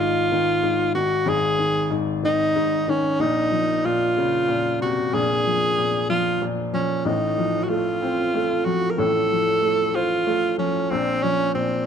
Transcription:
0.00 1.23 G#1 medium
0.00 0.63 G#2 medium
0.00 0.30 D#3 soft
0.00 0.94 F4 loud
0.32 0.93 D#3 medium
0.63 1.25 G#2 medium
0.95 1.57 D#3 medium
0.95 1.31 F#4 loud
1.26 3.16 G#1 medium
1.26 1.89 G#2 medium
1.26 1.98 G#4 loud
1.59 2.22 D#3 medium
1.90 2.54 G#2 medium
2.23 2.86 D#3 medium
2.23 2.91 D#4 loud
2.56 3.18 G#2 medium
2.88 3.19 D#3 medium
2.88 3.22 C#4 medium
3.19 5.08 A#1 medium
3.19 3.83 A#2 medium
3.19 3.87 D#4 loud
3.52 4.77 F3 soft
3.85 4.47 A#2 medium
3.85 4.81 F4 loud
4.17 5.41 C#3 medium
4.48 5.11 A#2 medium
4.81 6.05 C3 medium
4.81 5.16 F#4 medium
5.13 7.02 A#1 medium
5.13 5.77 A#2 medium
5.13 6.09 G#4 loud
5.46 6.08 F3 soft
5.78 6.40 A#2 medium
6.09 6.72 F3 medium
6.09 6.44 F4 loud
6.42 7.04 A#2 medium
6.73 7.05 F3 medium
6.73 7.07 C#4 medium
7.05 8.94 A1 medium
7.05 8.94 A2 medium
7.05 7.65 D#4 loud
7.38 8.62 F3 medium
7.64 7.71 F#4 medium
7.69 8.33 A3 medium
7.69 8.67 F4 medium
8.02 9.26 C4 medium
8.34 9.58 A3 medium
8.65 9.30 F3 medium
8.65 8.92 F#4 loud
8.90 9.00 A#4 medium
8.98 10.86 A1 medium
8.98 10.86 A2 medium
8.98 9.97 A4 loud
9.31 10.55 F3 medium
9.62 10.25 A3 medium
9.95 10.58 F4 loud
9.95 10.88 C5 medium
10.27 10.89 A3 medium
10.58 10.89 F3 medium
10.58 10.92 C#4 medium
10.90 11.86 A#1 medium
10.90 11.54 A#2 medium
10.90 11.24 C4 loud
11.22 11.86 F3 medium
11.22 11.54 C#4 loud
11.55 11.86 A#2 medium
11.55 11.86 C4 medium

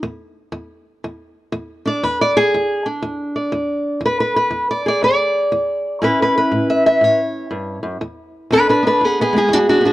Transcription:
0.03 0.49 E2 medium
0.52 0.99 E2 medium
1.04 1.50 E2 medium
1.52 1.99 E2 medium
1.86 2.06 D4 medium
1.86 2.04 D5 medium
2.03 2.49 E2 medium
2.03 2.20 B4 medium
2.21 2.37 D5 medium
2.37 2.86 G#4 loud
2.54 3.00 E2 medium
2.86 4.00 D4 medium
3.02 3.49 E2 medium
3.36 4.00 D5 soft
3.52 3.98 E2 medium
4.01 4.47 E2 medium
4.06 4.19 B4 medium
4.20 4.35 B4 medium
4.36 4.69 B4 medium
4.51 4.97 E2 medium
4.71 4.86 D5 medium
4.86 6.00 G#4 soft
4.86 5.03 D5 medium
5.03 5.48 E2 medium
5.03 6.02 D5 medium
5.52 5.98 E2 medium
6.02 6.48 A2 medium
6.02 7.99 C#4 soft
6.02 8.55 E4 soft
6.02 6.19 B4 medium
6.22 6.36 B4 medium
6.38 7.19 B4 medium
6.52 6.98 A2 medium
6.70 6.85 E5 medium
6.86 7.04 E5 medium
7.01 7.47 A2 medium
7.01 8.02 C#5 medium
7.51 7.82 G2 medium
7.83 8.01 F#2 medium
8.01 8.47 E2 medium
8.51 8.97 E2 medium
8.51 8.68 D4 medium
8.51 8.68 B4 medium
8.69 8.85 D4 medium
8.69 8.85 B4 medium
8.83 9.04 B3 soft
8.83 9.04 D4 medium
8.87 9.05 B4 medium
9.01 9.47 E2 medium
9.01 9.19 B3 medium
9.05 9.19 G#4 medium
9.21 9.35 B3 medium
9.21 9.36 G#4 medium
9.33 9.93 G#3 soft
9.33 9.53 B3 medium
9.38 9.93 G#4 medium
9.49 9.93 E2 medium
9.53 9.57 D4 medium
9.53 9.68 F#4 medium
9.69 9.78 D4 medium
9.69 9.84 F#4 medium
9.81 9.93 B3 soft
9.85 9.92 D4 medium
9.85 9.93 F#4 medium

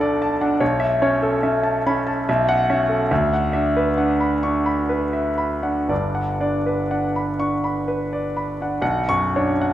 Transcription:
0.00 0.56 B1 medium
0.00 0.41 D4 medium
0.00 0.63 A4 medium
0.00 0.63 D5 medium
0.00 0.41 F#5 medium
0.00 0.22 A5 medium
0.00 0.63 B5 medium
0.22 0.53 A5 medium
0.41 0.61 D4 medium
0.41 0.61 F#5 medium
0.60 2.23 B1 medium
0.60 0.93 C#5 medium
0.80 1.14 E5 medium
1.02 1.35 C#4 medium
1.02 1.35 C#5 medium
1.22 1.56 A4 medium
1.43 1.77 C#4 medium
1.43 1.77 E5 medium
1.63 1.98 A5 medium
1.86 2.19 C#4 medium
1.86 2.07 B5 medium
2.07 2.27 A5 medium
2.29 3.09 B1 medium
2.29 2.61 E5 medium
2.49 2.81 F#5 medium
2.70 3.03 C#4 medium
2.70 3.03 E5 medium
2.89 3.10 A4 soft
3.11 5.86 D2 medium
3.11 3.45 E5 medium
3.34 3.67 F#5 medium
3.53 3.89 D4 soft
3.53 3.88 E5 medium
3.77 4.12 B4 medium
3.98 4.34 D4 soft
3.98 4.34 F#5 medium
4.20 4.57 B5 medium
4.43 4.81 D4 soft
4.43 4.66 C#6 medium
4.66 5.04 B5 medium
4.89 5.29 B4 medium
5.13 5.53 E5 soft
5.38 5.79 B5 medium
5.63 5.89 D4 soft
5.63 5.89 F#5 soft
5.88 8.77 G1 soft
5.88 8.78 G2 medium
5.88 6.31 D5 medium
6.15 6.56 F#5 soft
6.40 6.81 D4 soft
6.40 6.81 D5 soft
6.66 7.06 B4 soft
6.91 7.30 D4 soft
6.91 7.30 F#5 soft
7.16 7.54 B5 soft
7.39 7.78 D4 soft
7.39 7.64 C#6 medium
7.64 8.02 B5 soft
7.88 8.27 B4 soft
8.13 8.52 D5 soft
8.37 8.73 B5 soft
8.61 8.82 D4 soft
8.61 8.81 F#5 soft
8.82 9.73 B1 medium
8.82 9.24 F#5 medium
9.09 9.51 F#2 medium
9.09 9.50 C#6 medium
9.36 9.73 D4 medium
9.36 9.73 C#5 medium
9.61 9.73 F#5 medium

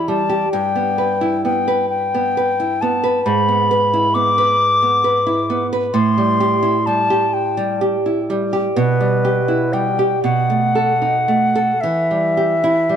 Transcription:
0.00 0.48 E2 soft
0.00 0.22 E4 soft
0.00 0.10 B5 soft
0.08 0.44 G3 soft
0.08 0.52 A5 medium
0.29 0.52 G4 soft
0.52 3.21 G2 medium
0.52 1.42 G5 medium
0.75 1.12 B3 soft
0.98 1.35 B4 soft
1.21 1.58 E4 soft
1.45 1.81 B3 soft
1.45 1.89 G5 medium
1.68 2.36 B4 soft
1.90 2.83 G5 medium
2.14 2.50 B3 soft
2.37 2.73 B4 soft
2.60 2.95 E4 soft
2.81 3.17 B3 soft
2.81 3.24 A5 medium
3.04 3.26 B4 medium
3.25 5.90 G#2 medium
3.25 4.16 B5 medium
3.48 3.84 B3 soft
3.71 4.07 B4 soft
3.93 4.29 E4 soft
4.14 4.51 B3 soft
4.14 5.67 D6 medium
4.38 5.03 B4 medium
4.82 5.18 B3 soft
5.04 5.40 B4 soft
5.27 5.62 E4 soft
5.50 5.86 B3 soft
5.73 5.95 B4 medium
5.94 8.72 A2 medium
5.94 6.88 C6 medium
6.18 6.54 G3 soft
6.40 6.77 G4 medium
6.63 7.00 E4 medium
6.86 7.24 G3 soft
6.86 7.35 A5 medium
7.10 7.80 G4 soft
7.33 7.81 G5 medium
7.57 7.95 G3 medium
7.81 8.19 G4 medium
8.06 8.43 E4 soft
8.30 8.67 G3 medium
8.53 8.76 G4 medium
8.76 10.21 B2 medium
8.76 9.75 B4 medium
9.00 9.39 G3 soft
9.25 9.64 G4 soft
9.48 9.89 E4 soft
9.73 10.14 G3 soft
9.73 10.23 G5 medium
9.99 10.24 G4 soft
10.24 11.77 B2 medium
10.24 11.82 F#5 medium
10.50 10.91 A3 soft
10.75 11.17 A4 soft
11.02 11.44 D#4 soft
11.28 11.71 A3 soft
11.55 11.82 A4 soft
11.81 12.96 E3 medium
11.81 12.96 E5 medium
12.11 12.53 G3 soft
12.37 12.79 G4 soft
12.64 12.96 E4 medium
12.89 12.96 G3 soft

